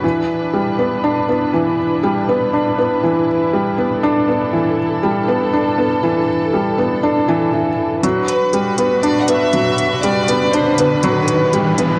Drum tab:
HH |--------|--------|--------|--------|

HH |xxxxxxxx|xxxxxxxx|